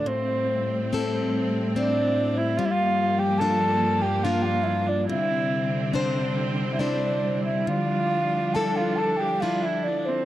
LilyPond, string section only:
\new Staff \with { instrumentName = "String section" } { \clef bass \time 3/4 \key d \minor \tempo 4 = 70 <a, g c'>2. | <g, f bes>2. | <d g c'>2. | <f d'>2. | }